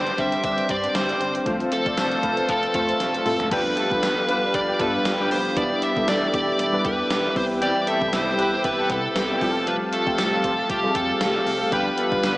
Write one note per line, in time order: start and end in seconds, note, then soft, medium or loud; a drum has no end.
0.00 0.11 G1 loud
0.00 1.17 D3 medium
0.00 0.17 G3 medium
0.00 0.18 G3 medium
0.00 0.18 C4 medium
0.00 0.69 C4 medium
0.00 1.17 C4 medium
0.00 0.18 D4 medium
0.00 1.17 G4 loud
0.00 1.48 B4 medium
0.00 0.19 C5 medium
0.00 1.42 C5 medium
0.00 1.45 G5 medium
0.00 1.44 D6 medium
0.07 closed hi-hat soft
0.18 0.37 G1 loud
0.18 0.51 G3 medium
0.18 0.94 G3 medium
0.18 0.51 C4 medium
0.18 0.51 D4 medium
0.18 0.51 C5 medium
0.18 0.43 E5 loud
0.18 kick medium
0.18 closed hi-hat medium
0.32 closed hi-hat soft
0.44 0.62 G1 loud
0.44 1.52 D4 medium
0.44 0.71 E5 loud
0.44 kick medium
0.44 closed hi-hat medium
0.58 closed hi-hat soft
0.69 0.88 G2 loud
0.69 1.02 G3 medium
0.69 1.20 C4 medium
0.69 1.02 C4 medium
0.69 1.03 D4 medium
0.69 1.03 C5 medium
0.69 0.95 D5 medium
0.69 kick loud
0.69 closed hi-hat medium
0.84 closed hi-hat medium
0.95 1.14 G1 loud
0.95 1.46 G3 medium
0.95 1.33 C5 medium
0.95 snare loud
0.95 closed hi-hat medium
1.09 closed hi-hat soft
1.20 1.39 G1 loud
1.20 1.38 G3 medium
1.20 1.38 C4 medium
1.20 1.97 C4 medium
1.20 1.38 D4 medium
1.20 1.38 C5 medium
1.20 closed hi-hat medium
1.35 closed hi-hat medium
1.46 1.65 F1 loud
1.46 3.22 F3 medium
1.46 1.72 F3 medium
1.46 1.70 A3 medium
1.46 1.70 C4 medium
1.46 3.22 C4 medium
1.46 1.71 F4 medium
1.46 3.22 A4 medium
1.46 3.50 A4 medium
1.46 1.71 C5 loud
1.46 3.49 F5 medium
1.46 3.49 A5 medium
1.46 kick loud
1.46 closed hi-hat medium
1.60 closed hi-hat soft
1.72 2.23 F3 medium
1.72 1.99 A4 medium
1.72 closed hi-hat medium
1.86 1.94 F1 loud
1.86 2.10 A3 medium
1.86 2.10 C4 medium
1.86 2.10 F4 medium
1.86 2.10 D5 medium
1.86 kick loud
1.86 closed hi-hat soft
1.97 2.16 F1 loud
1.97 2.74 A3 medium
1.97 2.51 C5 loud
1.97 snare loud
1.97 closed hi-hat medium
1.97 tambourine medium
2.11 closed hi-hat soft
2.23 2.42 F1 loud
2.23 3.00 F3 medium
2.23 2.56 A3 medium
2.23 2.56 C4 medium
2.23 2.56 F4 medium
2.23 2.56 B4 medium
2.23 kick medium
2.23 closed hi-hat medium
2.37 closed hi-hat medium
2.49 2.67 F1 loud
2.49 3.57 C4 medium
2.49 2.74 A4 medium
2.49 kick medium
2.49 closed hi-hat medium
2.63 closed hi-hat medium
2.74 2.93 F2 loud
2.74 3.07 A3 medium
2.74 3.25 A3 medium
2.74 3.07 C4 medium
2.74 3.07 F4 medium
2.74 3.48 A4 medium
2.74 3.08 C5 medium
2.74 kick loud
2.74 closed hi-hat medium
2.89 closed hi-hat medium
3.00 3.19 F1 loud
3.00 3.51 F3 medium
3.00 snare medium
3.00 closed hi-hat medium
3.14 closed hi-hat soft
3.25 3.44 F1 medium
3.25 3.43 A3 medium
3.25 3.57 A3 medium
3.25 3.43 C4 medium
3.25 3.43 F4 medium
3.25 3.43 A4 loud
3.25 mid tom medium
3.25 open hi-hat medium
3.40 closed hi-hat medium
3.40 floor tom medium
3.51 3.70 G1 loud
3.51 3.76 F3 medium
3.51 3.75 G3 medium
3.51 3.63 G3 loud
3.51 3.76 B3 medium
3.51 3.76 D4 medium
3.51 3.76 F4 medium
3.51 3.63 G4 loud
3.51 7.32 G4 medium
3.51 3.76 B4 medium
3.51 4.55 B4 loud
3.51 5.55 F5 medium
3.51 5.55 B5 medium
3.51 kick loud
3.51 closed hi-hat medium
3.51 crash loud
3.77 4.53 F3 medium
3.77 3.88 A3 medium
3.77 3.88 A4 medium
3.77 closed hi-hat medium
3.91 4.00 G1 loud
3.91 4.47 G3 medium
3.91 4.47 B3 medium
3.91 4.47 D4 medium
3.91 4.47 F4 medium
3.91 4.47 A4 medium
3.91 kick loud
4.03 4.21 G1 loud
4.03 5.31 B3 medium
4.03 snare loud
4.03 closed hi-hat medium
4.03 tambourine medium
4.28 4.47 G1 loud
4.28 4.40 B3 medium
4.28 4.79 D4 medium
4.28 4.40 B4 loud
4.28 closed hi-hat medium
4.54 4.73 G1 loud
4.54 5.04 F3 medium
4.54 4.79 D5 loud
4.54 kick medium
4.54 closed hi-hat medium
4.68 4.78 G3 medium
4.68 4.78 G4 medium
4.79 4.98 G2 loud
4.79 5.28 G3 medium
4.79 4.91 A3 medium
4.79 5.28 B3 medium
4.79 5.28 D4 medium
4.79 5.62 D4 medium
4.79 5.28 F4 medium
4.79 4.91 A4 loud
4.79 5.29 B4 medium
4.79 5.28 B4 loud
4.79 kick loud
4.79 closed hi-hat medium
5.05 5.32 G1 loud
5.05 5.62 F3 medium
5.05 snare loud
5.05 closed hi-hat loud
5.05 tambourine medium
5.20 5.40 G3 medium
5.20 5.40 G4 loud
5.31 5.49 F1 medium
5.31 5.56 B3 medium
5.31 5.57 C5 loud
5.31 open hi-hat medium
5.56 5.75 E1 loud
5.56 5.81 G3 medium
5.56 5.81 B3 medium
5.56 5.82 B3 medium
5.56 5.81 D4 medium
5.56 5.81 E4 medium
5.56 5.81 B4 medium
5.56 5.84 D5 loud
5.56 7.34 E5 medium
5.56 7.34 D6 medium
5.56 kick loud
5.56 closed hi-hat medium
5.82 6.59 B3 medium
5.82 6.07 E5 loud
5.82 closed hi-hat medium
5.96 6.05 E1 loud
5.96 6.44 G3 medium
5.96 6.44 B3 medium
5.96 6.44 D4 medium
5.96 6.45 E4 medium
5.96 6.45 A4 medium
5.96 kick loud
6.08 6.26 E1 loud
6.08 7.42 D4 medium
6.08 6.33 D5 loud
6.08 snare loud
6.08 closed hi-hat medium
6.08 tambourine medium
6.34 6.52 E1 loud
6.34 6.85 G4 medium
6.34 6.59 D5 loud
6.34 kick medium
6.34 closed hi-hat medium
6.59 6.78 E1 loud
6.59 7.10 B3 medium
6.59 6.84 D5 loud
6.59 closed hi-hat medium
6.73 7.29 G3 medium
6.73 7.29 B3 medium
6.73 7.29 D4 medium
6.73 7.29 E4 medium
6.73 7.29 B4 medium
6.85 7.03 E2 medium
6.85 8.38 G4 medium
6.85 7.33 B4 loud
6.85 kick loud
6.85 closed hi-hat medium
7.10 7.29 E1 loud
7.10 7.87 B3 medium
7.10 snare loud
7.10 closed hi-hat loud
7.10 tambourine medium
7.36 7.73 C2 loud
7.36 7.61 E3 medium
7.36 7.87 G3 medium
7.36 7.87 B3 medium
7.36 7.87 C4 medium
7.36 7.88 E4 medium
7.36 9.39 G4 medium
7.36 7.88 B4 medium
7.36 7.44 C5 loud
7.36 9.39 E5 medium
7.36 9.39 G5 loud
7.36 kick loud
7.36 open hi-hat medium
7.62 9.41 E3 medium
7.62 7.73 G3 loud
7.62 7.73 G4 loud
7.62 7.86 D5 loud
7.62 closed hi-hat medium
7.87 7.99 A3 medium
7.87 8.63 B3 medium
7.87 7.99 A4 medium
7.87 8.14 E5 loud
7.87 closed hi-hat medium
8.01 8.10 C2 loud
8.01 8.57 C3 medium
8.01 8.57 G3 medium
8.01 8.57 E4 medium
8.01 8.07 A4 medium
8.01 kick loud
8.08 8.61 B5 medium
8.13 8.32 C2 loud
8.13 9.47 E4 medium
8.13 8.61 C5 loud
8.13 snare loud
8.13 closed hi-hat loud
8.13 tambourine medium
8.38 8.57 C2 loud
8.38 8.50 B3 medium
8.38 8.90 G4 medium
8.38 8.50 B4 loud
8.38 closed hi-hat medium
8.64 8.83 C2 loud
8.64 9.14 B3 medium
8.64 8.91 B4 loud
8.64 kick medium
8.64 closed hi-hat medium
8.78 8.88 A3 medium
8.78 8.88 A4 medium
8.89 9.08 C3 loud
8.89 9.38 G3 medium
8.89 9.38 B3 medium
8.89 9.01 B3 loud
8.89 9.39 C4 medium
8.89 9.39 E4 medium
8.89 9.70 G4 medium
8.89 9.70 A4 loud
8.89 9.01 B4 loud
8.89 9.39 B4 medium
8.89 kick loud
8.89 closed hi-hat medium
9.16 9.34 C2 loud
9.16 9.47 B3 medium
9.16 snare loud
9.16 closed hi-hat loud
9.16 tambourine medium
9.30 9.50 G3 medium
9.30 9.50 G4 loud
9.41 9.78 F1 loud
9.41 9.67 F3 medium
9.41 9.92 G3 medium
9.41 9.93 A3 medium
9.41 9.93 C4 medium
9.41 9.93 F4 medium
9.41 12.38 G4 medium
9.41 9.48 G4 medium
9.41 12.38 F5 medium
9.41 11.70 A5 medium
9.41 kick loud
9.41 open hi-hat medium
9.48 9.96 A4 medium
9.67 11.72 F3 medium
9.67 9.75 B4 loud
9.67 closed hi-hat medium
9.93 10.68 A3 medium
9.93 10.18 A4 loud
9.93 closed hi-hat medium
10.06 10.15 F1 loud
10.06 10.54 G3 medium
10.06 10.55 A3 medium
10.06 10.55 C4 medium
10.06 10.55 F4 medium
10.06 10.55 G4 medium
10.06 kick loud
10.18 10.37 F1 loud
10.18 11.45 C4 medium
10.18 10.70 A4 medium
10.18 snare loud
10.18 closed hi-hat medium
10.18 tambourine medium
10.44 10.63 F1 loud
10.44 10.58 F4 medium
10.44 kick medium
10.44 closed hi-hat medium
10.58 10.94 G4 medium
10.70 10.88 F1 loud
10.70 11.20 A3 medium
10.70 10.96 G4 medium
10.70 kick loud
10.70 closed hi-hat medium
10.83 11.39 G3 medium
10.83 11.39 A3 medium
10.83 11.40 C4 medium
10.83 11.40 F4 medium
10.83 10.90 G#4 medium
10.91 11.43 A4 medium
10.95 11.14 F2 loud
10.95 12.38 G4 medium
10.95 11.73 A4 loud
10.95 kick medium
10.95 closed hi-hat medium
11.21 11.39 F1 loud
11.21 11.78 A3 medium
11.21 snare loud
11.21 closed hi-hat loud
11.21 tambourine medium
11.46 11.65 F1 loud
11.46 11.78 C4 medium
11.46 open hi-hat medium
11.72 11.91 G1 loud
11.72 12.38 F3 medium
11.72 11.96 G3 medium
11.72 11.83 G3 loud
11.72 11.96 B3 medium
11.72 11.96 D4 medium
11.72 11.97 F4 medium
11.72 11.83 G4 loud
11.72 11.97 B4 medium
11.72 12.38 B4 medium
11.72 12.38 B5 medium
11.72 kick loud
11.72 closed hi-hat medium
11.98 12.09 A3 medium
11.98 12.38 B3 medium
11.98 12.09 A4 medium
11.98 closed hi-hat medium
12.12 12.20 G1 loud
12.12 12.38 G3 medium
12.12 12.38 B3 medium
12.12 12.38 D4 medium
12.12 12.38 F4 medium
12.12 12.38 B4 medium
12.12 kick loud
12.23 12.38 G1 loud
12.23 12.38 D4 medium
12.23 snare loud
12.23 closed hi-hat medium
12.23 tambourine medium